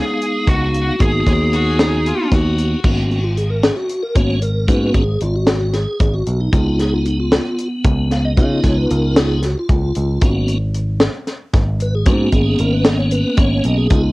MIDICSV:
0, 0, Header, 1, 6, 480
1, 0, Start_track
1, 0, Tempo, 527241
1, 909, Time_signature, 7, 3, 24, 8
1, 12855, End_track
2, 0, Start_track
2, 0, Title_t, "Lead electric guitar"
2, 0, Program_c, 0, 29
2, 0, Note_on_c, 0, 68, 90
2, 445, Note_on_c, 0, 66, 83
2, 448, Note_off_c, 0, 68, 0
2, 924, Note_on_c, 0, 68, 77
2, 931, Note_off_c, 0, 66, 0
2, 2080, Note_off_c, 0, 68, 0
2, 12855, End_track
3, 0, Start_track
3, 0, Title_t, "Fiddle"
3, 0, Program_c, 1, 110
3, 1391, Note_on_c, 1, 66, 95
3, 1633, Note_on_c, 1, 63, 83
3, 1647, Note_off_c, 1, 66, 0
3, 1884, Note_on_c, 1, 65, 86
3, 1897, Note_off_c, 1, 63, 0
3, 2128, Note_on_c, 1, 66, 78
3, 2141, Note_off_c, 1, 65, 0
3, 2598, Note_off_c, 1, 66, 0
3, 12855, End_track
4, 0, Start_track
4, 0, Title_t, "Tonewheel organ"
4, 0, Program_c, 2, 16
4, 0, Note_on_c, 2, 56, 58
4, 0, Note_on_c, 2, 59, 50
4, 0, Note_on_c, 2, 63, 56
4, 0, Note_on_c, 2, 77, 61
4, 877, Note_off_c, 2, 56, 0
4, 877, Note_off_c, 2, 59, 0
4, 877, Note_off_c, 2, 63, 0
4, 877, Note_off_c, 2, 77, 0
4, 900, Note_on_c, 2, 66, 65
4, 901, Note_on_c, 2, 58, 55
4, 902, Note_on_c, 2, 59, 55
4, 902, Note_on_c, 2, 63, 52
4, 2550, Note_off_c, 2, 58, 0
4, 2550, Note_off_c, 2, 66, 0
4, 2551, Note_off_c, 2, 59, 0
4, 2551, Note_off_c, 2, 63, 0
4, 2585, Note_on_c, 2, 58, 49
4, 2586, Note_on_c, 2, 59, 42
4, 2596, Note_on_c, 2, 66, 55
4, 2598, Note_on_c, 2, 61, 46
4, 2826, Note_off_c, 2, 66, 0
4, 2837, Note_on_c, 2, 66, 80
4, 2906, Note_off_c, 2, 58, 0
4, 2906, Note_off_c, 2, 59, 0
4, 2912, Note_off_c, 2, 61, 0
4, 2948, Note_on_c, 2, 65, 79
4, 2956, Note_off_c, 2, 66, 0
4, 3070, Note_on_c, 2, 68, 78
4, 3072, Note_off_c, 2, 65, 0
4, 3185, Note_on_c, 2, 70, 79
4, 3192, Note_off_c, 2, 68, 0
4, 3303, Note_on_c, 2, 68, 80
4, 3310, Note_off_c, 2, 70, 0
4, 3425, Note_on_c, 2, 66, 79
4, 3429, Note_off_c, 2, 68, 0
4, 3665, Note_on_c, 2, 70, 81
4, 3673, Note_off_c, 2, 66, 0
4, 3778, Note_on_c, 2, 58, 43
4, 3784, Note_on_c, 2, 59, 40
4, 3787, Note_on_c, 2, 73, 87
4, 3788, Note_on_c, 2, 61, 37
4, 3790, Note_off_c, 2, 70, 0
4, 3790, Note_on_c, 2, 66, 47
4, 3998, Note_off_c, 2, 58, 0
4, 4001, Note_off_c, 2, 59, 0
4, 4003, Note_off_c, 2, 61, 0
4, 4005, Note_off_c, 2, 66, 0
4, 4021, Note_on_c, 2, 70, 82
4, 4034, Note_off_c, 2, 73, 0
4, 4256, Note_on_c, 2, 58, 52
4, 4262, Note_on_c, 2, 59, 46
4, 4262, Note_on_c, 2, 71, 94
4, 4263, Note_on_c, 2, 61, 47
4, 4268, Note_on_c, 2, 66, 58
4, 4271, Note_off_c, 2, 70, 0
4, 4487, Note_off_c, 2, 71, 0
4, 4501, Note_on_c, 2, 68, 87
4, 4580, Note_off_c, 2, 58, 0
4, 4583, Note_off_c, 2, 59, 0
4, 4584, Note_off_c, 2, 61, 0
4, 4586, Note_off_c, 2, 66, 0
4, 4750, Note_off_c, 2, 68, 0
4, 4760, Note_on_c, 2, 65, 76
4, 4875, Note_on_c, 2, 66, 84
4, 4876, Note_off_c, 2, 65, 0
4, 5228, Note_on_c, 2, 68, 87
4, 5241, Note_off_c, 2, 66, 0
4, 5585, Note_on_c, 2, 66, 79
4, 5597, Note_off_c, 2, 68, 0
4, 5829, Note_on_c, 2, 63, 66
4, 5832, Note_off_c, 2, 66, 0
4, 5934, Note_off_c, 2, 63, 0
4, 5944, Note_on_c, 2, 59, 49
4, 5945, Note_on_c, 2, 63, 50
4, 5950, Note_on_c, 2, 65, 58
4, 6068, Note_off_c, 2, 65, 0
4, 6079, Note_on_c, 2, 65, 70
4, 6195, Note_off_c, 2, 65, 0
4, 6200, Note_on_c, 2, 68, 78
4, 6311, Note_on_c, 2, 65, 76
4, 6316, Note_off_c, 2, 68, 0
4, 6416, Note_off_c, 2, 63, 0
4, 6427, Note_on_c, 2, 63, 71
4, 6431, Note_off_c, 2, 65, 0
4, 6537, Note_off_c, 2, 63, 0
4, 6552, Note_on_c, 2, 65, 74
4, 6995, Note_off_c, 2, 65, 0
4, 7393, Note_on_c, 2, 77, 86
4, 7500, Note_off_c, 2, 77, 0
4, 7512, Note_on_c, 2, 75, 109
4, 7587, Note_off_c, 2, 59, 0
4, 7619, Note_on_c, 2, 59, 55
4, 7631, Note_on_c, 2, 63, 48
4, 7634, Note_on_c, 2, 65, 57
4, 7863, Note_on_c, 2, 73, 93
4, 7878, Note_off_c, 2, 75, 0
4, 7987, Note_off_c, 2, 73, 0
4, 7992, Note_on_c, 2, 71, 84
4, 8111, Note_off_c, 2, 71, 0
4, 8117, Note_on_c, 2, 70, 81
4, 8344, Note_off_c, 2, 59, 0
4, 8349, Note_off_c, 2, 63, 0
4, 8355, Note_off_c, 2, 65, 0
4, 8355, Note_on_c, 2, 59, 47
4, 8357, Note_off_c, 2, 70, 0
4, 8360, Note_on_c, 2, 63, 43
4, 8365, Note_on_c, 2, 68, 81
4, 8366, Note_on_c, 2, 65, 52
4, 8566, Note_off_c, 2, 59, 0
4, 8569, Note_off_c, 2, 63, 0
4, 8572, Note_off_c, 2, 65, 0
4, 8601, Note_off_c, 2, 68, 0
4, 8606, Note_on_c, 2, 66, 70
4, 8718, Note_off_c, 2, 66, 0
4, 8731, Note_on_c, 2, 65, 70
4, 9313, Note_on_c, 2, 58, 52
4, 9315, Note_on_c, 2, 59, 48
4, 9316, Note_on_c, 2, 61, 46
4, 9318, Note_on_c, 2, 66, 56
4, 9401, Note_off_c, 2, 65, 0
4, 9628, Note_off_c, 2, 58, 0
4, 9629, Note_off_c, 2, 59, 0
4, 9629, Note_off_c, 2, 61, 0
4, 9631, Note_off_c, 2, 66, 0
4, 10761, Note_on_c, 2, 71, 82
4, 10876, Note_off_c, 2, 71, 0
4, 10880, Note_on_c, 2, 68, 77
4, 10984, Note_on_c, 2, 58, 52
4, 10989, Note_on_c, 2, 61, 48
4, 10991, Note_on_c, 2, 59, 47
4, 10996, Note_off_c, 2, 68, 0
4, 10996, Note_on_c, 2, 66, 79
4, 11230, Note_on_c, 2, 68, 81
4, 11243, Note_off_c, 2, 66, 0
4, 11471, Note_on_c, 2, 70, 84
4, 11474, Note_off_c, 2, 68, 0
4, 11589, Note_on_c, 2, 71, 89
4, 11592, Note_off_c, 2, 70, 0
4, 11706, Note_on_c, 2, 75, 100
4, 11710, Note_off_c, 2, 71, 0
4, 11817, Note_off_c, 2, 75, 0
4, 11824, Note_on_c, 2, 73, 97
4, 11944, Note_on_c, 2, 71, 88
4, 11949, Note_off_c, 2, 73, 0
4, 12187, Note_on_c, 2, 73, 87
4, 12192, Note_off_c, 2, 71, 0
4, 12433, Note_on_c, 2, 75, 84
4, 12434, Note_off_c, 2, 73, 0
4, 12540, Note_on_c, 2, 68, 71
4, 12542, Note_off_c, 2, 75, 0
4, 12630, Note_off_c, 2, 58, 0
4, 12632, Note_off_c, 2, 61, 0
4, 12633, Note_off_c, 2, 59, 0
4, 12660, Note_on_c, 2, 59, 54
4, 12662, Note_on_c, 2, 63, 50
4, 12663, Note_on_c, 2, 65, 62
4, 12766, Note_off_c, 2, 68, 0
4, 12855, Note_off_c, 2, 59, 0
4, 12855, Note_off_c, 2, 63, 0
4, 12855, Note_off_c, 2, 65, 0
4, 12855, End_track
5, 0, Start_track
5, 0, Title_t, "Picked electric bass"
5, 0, Program_c, 3, 34
5, 430, Note_on_c, 3, 37, 82
5, 815, Note_off_c, 3, 37, 0
5, 913, Note_on_c, 3, 32, 86
5, 1104, Note_off_c, 3, 32, 0
5, 1152, Note_on_c, 3, 39, 80
5, 1920, Note_off_c, 3, 39, 0
5, 2113, Note_on_c, 3, 39, 84
5, 2496, Note_off_c, 3, 39, 0
5, 2592, Note_on_c, 3, 32, 79
5, 3359, Note_off_c, 3, 32, 0
5, 3785, Note_on_c, 3, 32, 79
5, 4265, Note_on_c, 3, 44, 82
5, 4278, Note_off_c, 3, 32, 0
5, 4458, Note_off_c, 3, 44, 0
5, 4503, Note_on_c, 3, 32, 80
5, 4697, Note_off_c, 3, 32, 0
5, 4749, Note_on_c, 3, 32, 81
5, 5324, Note_off_c, 3, 32, 0
5, 5464, Note_on_c, 3, 32, 84
5, 5657, Note_off_c, 3, 32, 0
5, 5709, Note_on_c, 3, 35, 75
5, 5900, Note_off_c, 3, 35, 0
5, 5945, Note_on_c, 3, 37, 80
5, 6714, Note_off_c, 3, 37, 0
5, 7145, Note_on_c, 3, 37, 81
5, 7630, Note_on_c, 3, 49, 85
5, 7644, Note_off_c, 3, 37, 0
5, 7820, Note_off_c, 3, 49, 0
5, 7865, Note_on_c, 3, 37, 76
5, 8057, Note_off_c, 3, 37, 0
5, 8112, Note_on_c, 3, 37, 83
5, 8686, Note_off_c, 3, 37, 0
5, 8825, Note_on_c, 3, 37, 81
5, 9017, Note_off_c, 3, 37, 0
5, 9073, Note_on_c, 3, 37, 82
5, 9261, Note_off_c, 3, 37, 0
5, 9307, Note_on_c, 3, 32, 89
5, 10075, Note_off_c, 3, 32, 0
5, 10504, Note_on_c, 3, 32, 82
5, 10982, Note_on_c, 3, 44, 95
5, 10996, Note_off_c, 3, 32, 0
5, 11176, Note_off_c, 3, 44, 0
5, 11226, Note_on_c, 3, 32, 80
5, 11418, Note_off_c, 3, 32, 0
5, 11468, Note_on_c, 3, 32, 88
5, 12045, Note_off_c, 3, 32, 0
5, 12182, Note_on_c, 3, 32, 86
5, 12376, Note_off_c, 3, 32, 0
5, 12427, Note_on_c, 3, 35, 80
5, 12619, Note_off_c, 3, 35, 0
5, 12663, Note_on_c, 3, 37, 86
5, 12855, Note_off_c, 3, 37, 0
5, 12855, End_track
6, 0, Start_track
6, 0, Title_t, "Drums"
6, 195, Note_on_c, 9, 42, 57
6, 286, Note_off_c, 9, 42, 0
6, 431, Note_on_c, 9, 36, 101
6, 434, Note_on_c, 9, 42, 76
6, 522, Note_off_c, 9, 36, 0
6, 525, Note_off_c, 9, 42, 0
6, 674, Note_on_c, 9, 42, 58
6, 765, Note_off_c, 9, 42, 0
6, 912, Note_on_c, 9, 36, 98
6, 915, Note_on_c, 9, 42, 76
6, 1003, Note_off_c, 9, 36, 0
6, 1006, Note_off_c, 9, 42, 0
6, 1152, Note_on_c, 9, 36, 67
6, 1153, Note_on_c, 9, 38, 30
6, 1153, Note_on_c, 9, 42, 54
6, 1243, Note_off_c, 9, 36, 0
6, 1244, Note_off_c, 9, 38, 0
6, 1244, Note_off_c, 9, 42, 0
6, 1391, Note_on_c, 9, 42, 54
6, 1482, Note_off_c, 9, 42, 0
6, 1631, Note_on_c, 9, 38, 91
6, 1631, Note_on_c, 9, 42, 75
6, 1722, Note_off_c, 9, 38, 0
6, 1722, Note_off_c, 9, 42, 0
6, 1875, Note_on_c, 9, 42, 57
6, 1966, Note_off_c, 9, 42, 0
6, 2107, Note_on_c, 9, 38, 31
6, 2107, Note_on_c, 9, 42, 71
6, 2109, Note_on_c, 9, 36, 96
6, 2198, Note_off_c, 9, 38, 0
6, 2198, Note_off_c, 9, 42, 0
6, 2200, Note_off_c, 9, 36, 0
6, 2350, Note_on_c, 9, 42, 52
6, 2441, Note_off_c, 9, 42, 0
6, 2587, Note_on_c, 9, 36, 101
6, 2587, Note_on_c, 9, 49, 84
6, 2678, Note_off_c, 9, 36, 0
6, 2678, Note_off_c, 9, 49, 0
6, 2832, Note_on_c, 9, 42, 50
6, 2923, Note_off_c, 9, 42, 0
6, 3070, Note_on_c, 9, 42, 51
6, 3161, Note_off_c, 9, 42, 0
6, 3309, Note_on_c, 9, 38, 92
6, 3309, Note_on_c, 9, 42, 72
6, 3400, Note_off_c, 9, 38, 0
6, 3400, Note_off_c, 9, 42, 0
6, 3543, Note_on_c, 9, 42, 60
6, 3634, Note_off_c, 9, 42, 0
6, 3780, Note_on_c, 9, 42, 82
6, 3784, Note_on_c, 9, 36, 92
6, 3871, Note_off_c, 9, 42, 0
6, 3875, Note_off_c, 9, 36, 0
6, 4021, Note_on_c, 9, 42, 57
6, 4112, Note_off_c, 9, 42, 0
6, 4261, Note_on_c, 9, 42, 79
6, 4262, Note_on_c, 9, 36, 92
6, 4352, Note_off_c, 9, 42, 0
6, 4353, Note_off_c, 9, 36, 0
6, 4497, Note_on_c, 9, 42, 53
6, 4501, Note_on_c, 9, 36, 67
6, 4588, Note_off_c, 9, 42, 0
6, 4592, Note_off_c, 9, 36, 0
6, 4738, Note_on_c, 9, 42, 58
6, 4829, Note_off_c, 9, 42, 0
6, 4977, Note_on_c, 9, 38, 97
6, 4977, Note_on_c, 9, 42, 78
6, 5068, Note_off_c, 9, 38, 0
6, 5068, Note_off_c, 9, 42, 0
6, 5219, Note_on_c, 9, 38, 32
6, 5219, Note_on_c, 9, 42, 60
6, 5310, Note_off_c, 9, 38, 0
6, 5310, Note_off_c, 9, 42, 0
6, 5459, Note_on_c, 9, 42, 78
6, 5463, Note_on_c, 9, 36, 97
6, 5550, Note_off_c, 9, 42, 0
6, 5554, Note_off_c, 9, 36, 0
6, 5702, Note_on_c, 9, 42, 54
6, 5793, Note_off_c, 9, 42, 0
6, 5940, Note_on_c, 9, 42, 76
6, 5942, Note_on_c, 9, 36, 102
6, 6031, Note_off_c, 9, 42, 0
6, 6033, Note_off_c, 9, 36, 0
6, 6182, Note_on_c, 9, 38, 30
6, 6182, Note_on_c, 9, 42, 53
6, 6273, Note_off_c, 9, 38, 0
6, 6273, Note_off_c, 9, 42, 0
6, 6421, Note_on_c, 9, 42, 51
6, 6512, Note_off_c, 9, 42, 0
6, 6663, Note_on_c, 9, 38, 93
6, 6663, Note_on_c, 9, 42, 69
6, 6754, Note_off_c, 9, 38, 0
6, 6754, Note_off_c, 9, 42, 0
6, 6905, Note_on_c, 9, 42, 56
6, 6996, Note_off_c, 9, 42, 0
6, 7141, Note_on_c, 9, 42, 79
6, 7143, Note_on_c, 9, 36, 102
6, 7232, Note_off_c, 9, 42, 0
6, 7234, Note_off_c, 9, 36, 0
6, 7385, Note_on_c, 9, 38, 32
6, 7385, Note_on_c, 9, 42, 54
6, 7476, Note_off_c, 9, 38, 0
6, 7476, Note_off_c, 9, 42, 0
6, 7624, Note_on_c, 9, 36, 100
6, 7625, Note_on_c, 9, 42, 72
6, 7715, Note_off_c, 9, 36, 0
6, 7716, Note_off_c, 9, 42, 0
6, 7864, Note_on_c, 9, 36, 69
6, 7865, Note_on_c, 9, 38, 30
6, 7865, Note_on_c, 9, 42, 54
6, 7955, Note_off_c, 9, 36, 0
6, 7956, Note_off_c, 9, 38, 0
6, 7956, Note_off_c, 9, 42, 0
6, 8106, Note_on_c, 9, 42, 55
6, 8197, Note_off_c, 9, 42, 0
6, 8342, Note_on_c, 9, 38, 95
6, 8342, Note_on_c, 9, 42, 70
6, 8433, Note_off_c, 9, 38, 0
6, 8433, Note_off_c, 9, 42, 0
6, 8581, Note_on_c, 9, 38, 35
6, 8581, Note_on_c, 9, 42, 64
6, 8672, Note_off_c, 9, 38, 0
6, 8672, Note_off_c, 9, 42, 0
6, 8820, Note_on_c, 9, 42, 84
6, 8824, Note_on_c, 9, 36, 102
6, 8911, Note_off_c, 9, 42, 0
6, 8915, Note_off_c, 9, 36, 0
6, 9058, Note_on_c, 9, 42, 60
6, 9149, Note_off_c, 9, 42, 0
6, 9296, Note_on_c, 9, 42, 82
6, 9302, Note_on_c, 9, 36, 97
6, 9387, Note_off_c, 9, 42, 0
6, 9393, Note_off_c, 9, 36, 0
6, 9539, Note_on_c, 9, 42, 55
6, 9630, Note_off_c, 9, 42, 0
6, 9779, Note_on_c, 9, 42, 58
6, 9870, Note_off_c, 9, 42, 0
6, 10014, Note_on_c, 9, 38, 95
6, 10014, Note_on_c, 9, 42, 76
6, 10106, Note_off_c, 9, 38, 0
6, 10106, Note_off_c, 9, 42, 0
6, 10261, Note_on_c, 9, 38, 33
6, 10261, Note_on_c, 9, 42, 60
6, 10352, Note_off_c, 9, 38, 0
6, 10352, Note_off_c, 9, 42, 0
6, 10501, Note_on_c, 9, 38, 34
6, 10501, Note_on_c, 9, 42, 76
6, 10503, Note_on_c, 9, 36, 103
6, 10592, Note_off_c, 9, 38, 0
6, 10592, Note_off_c, 9, 42, 0
6, 10594, Note_off_c, 9, 36, 0
6, 10742, Note_on_c, 9, 42, 55
6, 10833, Note_off_c, 9, 42, 0
6, 10975, Note_on_c, 9, 42, 76
6, 10982, Note_on_c, 9, 36, 105
6, 11066, Note_off_c, 9, 42, 0
6, 11073, Note_off_c, 9, 36, 0
6, 11217, Note_on_c, 9, 42, 54
6, 11221, Note_on_c, 9, 36, 68
6, 11308, Note_off_c, 9, 42, 0
6, 11312, Note_off_c, 9, 36, 0
6, 11456, Note_on_c, 9, 42, 57
6, 11547, Note_off_c, 9, 42, 0
6, 11696, Note_on_c, 9, 38, 97
6, 11696, Note_on_c, 9, 42, 74
6, 11787, Note_off_c, 9, 38, 0
6, 11787, Note_off_c, 9, 42, 0
6, 11934, Note_on_c, 9, 42, 64
6, 12025, Note_off_c, 9, 42, 0
6, 12171, Note_on_c, 9, 42, 83
6, 12178, Note_on_c, 9, 36, 106
6, 12262, Note_off_c, 9, 42, 0
6, 12269, Note_off_c, 9, 36, 0
6, 12414, Note_on_c, 9, 42, 61
6, 12505, Note_off_c, 9, 42, 0
6, 12654, Note_on_c, 9, 42, 83
6, 12660, Note_on_c, 9, 36, 107
6, 12745, Note_off_c, 9, 42, 0
6, 12751, Note_off_c, 9, 36, 0
6, 12855, End_track
0, 0, End_of_file